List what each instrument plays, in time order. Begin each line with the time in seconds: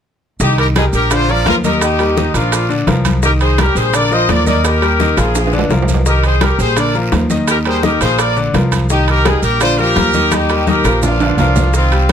0.40 upright bass C2, grand piano D#3 D#4 D#5, horn section D#4 G4, high bongo, high conga, long guiro, maracas
0.58 horn section G4 A#4, high conga, high timbale, maracas
0.76 grand piano G3 G4 A#4, horn section D#4 G#4, high bongo, high conga, high timbale, short guiro, maracas
0.93 upright bass A#1, horn section G4 A#4, high bongo, high conga, short guiro, maracas
1.11 grand piano D3 D4 D5, horn section F4 C5, high bongo, high conga, high timbale, long guiro, maracas
1.29 grand piano F3 F4 A#4, horn section A#4 D5, high bongo, high conga, maracas
1.46 upright bass D#2, horn section F4 A#4, high bongo, low bongo, high conga, high timbale, low timbale, short guiro, maracas
1.64 grand piano D#3 D#4 D#5, horn section G4 A#4, high bongo, high conga, short guiro, maracas
1.81 horn section D#4 G4, high bongo, high conga, high timbale, long guiro, maracas
1.99 grand piano G3 G4 A#4, high conga, high timbale, maracas
2.17 grand piano D#3 D#4 D#5, high bongo, high conga, short guiro, maracas
2.34 upright bass A#1, grand piano F3 F4 A#4, horn section D4 F4, high bongo, high conga, high timbale, short guiro, maracas
2.52 high bongo, high conga, high timbale, long guiro, maracas
2.69 grand piano D3 D4 D5, high bongo, high conga, maracas
2.87 upright bass C2, grand piano F3 F4 A#4, high bongo, low bongo, high conga, high timbale, low timbale, short guiro, maracas
3.05 high bongo, high conga, high timbale, short guiro, maracas
3.23 grand piano D#3 D#4 D#5, horn section G4 A#4, high bongo, high conga, long guiro, maracas
3.40 horn section G#4 C5, high conga, high timbale, maracas
3.58 grand piano G3 G4 A#4, horn section G4 A#4, high bongo, high conga, high timbale, short guiro, maracas
3.75 upright bass A#1, horn section G#4 C5, high bongo, high conga, short guiro, maracas
3.93 grand piano D3 D4 D5, horn section A#4 D5, high bongo, high conga, high timbale, long guiro, maracas
4.11 grand piano F3 F4 A#4, horn section C5 D#5, high bongo, high conga, maracas
4.29 upright bass D#2, horn section A#4 D5, high bongo, low bongo, high conga, high timbale, short guiro, maracas
4.46 grand piano D#3 D#4 D#5, horn section A#4 D5, high bongo, high conga, short guiro, maracas
4.64 horn section G4 A#4, high bongo, high conga, high timbale, long guiro, maracas
4.82 grand piano G3 G4 A#4, high conga, high timbale, maracas
4.99 grand piano D#3 D#4 D#5, high bongo, high conga, short guiro, maracas
5.17 upright bass A#1, grand piano F3 F4 A#4, horn section F4 G#4, high bongo, high conga, high timbale, short guiro, maracas
5.35 high bongo, high conga, high timbale, long guiro, maracas
5.47 high timbale
5.53 grand piano D3 D4 D5, high bongo, high conga, maracas
5.59 low timbale
5.69 upright bass C2, grand piano F3 F4 A#4, high bongo, low bongo, high conga, low timbale, short guiro, maracas
5.82 low timbale
5.88 high bongo, high conga, short guiro, maracas
5.94 low timbale
6.06 grand piano D#3 D#4 D#5, horn section G4 A#4, high bongo, high conga, long guiro, maracas
6.23 horn section G#4 C5, high conga, high timbale, maracas
6.41 grand piano G3 G4 A#4, horn section G4 A#4, high bongo, high conga, high timbale, short guiro, maracas
6.59 upright bass A#1, horn section G#4 C5, high bongo, high conga, short guiro, maracas
6.76 grand piano D3 D4 D5, horn section A#4 D5, high bongo, high conga, high timbale, long guiro, maracas
6.94 grand piano F3 F4 A#4, high bongo, high conga, maracas
7.12 upright bass D#2, high bongo, low bongo, high conga, high timbale, low timbale, short guiro, maracas
7.30 grand piano D#3 D#4 D#5, high bongo, high conga, short guiro, maracas
7.48 horn section G4 A#4, high bongo, high conga, high timbale, long guiro, maracas
7.65 grand piano G3 G4 A#4, horn section G#4 C5, high conga, high timbale, maracas
7.83 grand piano D#3 D#4 D#5, horn section G4 A#4, high bongo, high conga, short guiro, maracas
8.01 upright bass A#1, grand piano F3 F4 A#4, horn section G#4 C5, high bongo, high conga, high timbale, short guiro, maracas
8.19 horn section A#4 D5, high bongo, high conga, high timbale, long guiro, maracas
8.37 grand piano D3 D4 D5, high bongo, high conga, maracas
8.54 upright bass C2, grand piano F3 F4 A#4, high bongo, low bongo, high conga, high timbale, low timbale, short guiro, maracas
8.72 high bongo, high conga, high timbale, short guiro, maracas
8.89 grand piano D#3 D#4 D#5, horn section D#4 G4, high bongo, long guiro, maracas
9.08 horn section G4 A#4, high conga, high timbale, maracas
9.25 grand piano G3 G4 A#4, horn section D#4 G#4, high bongo, high conga, high timbale, short guiro, maracas
9.42 upright bass A#1, horn section G4 A#4, high bongo, high conga, short guiro, maracas
9.60 grand piano D3 D4 D5, horn section F4 C5, high bongo, high conga, high timbale, long guiro, maracas
9.78 grand piano F3 F4 A#4, horn section G4 A#4, high bongo, high conga, maracas
9.96 upright bass D#2, high bongo, low bongo, high conga, high timbale, short guiro, maracas
10.14 grand piano D#3 D#4 D#5, high bongo, high conga, short guiro, maracas
10.31 horn section D#4 G4, high bongo, high conga, high timbale, long guiro, maracas
10.49 grand piano G3 G4 A#4, high timbale, maracas
10.67 grand piano D#3 D#4 D#5, horn section G4 A#4, high bongo, high conga, short guiro, maracas
10.84 upright bass A#1, grand piano F3 F4 A#4, high bongo, high conga, high timbale, short guiro, maracas
11.02 horn section D4 F4, low conga, high timbale, long guiro, maracas
11.20 grand piano D3 D4 D5, high timbale, maracas
11.37 upright bass C2, grand piano F3 F4 A#4, horn section D4 F4, low conga, low timbale, short guiro, maracas
11.56 low bongo, low conga, low timbale, short guiro, maracas
11.74 grand piano D#3 D#4, horn section C4 F4, high bongo, high conga, long guiro, maracas
11.92 grand piano G3 G4, high conga, high timbale, maracas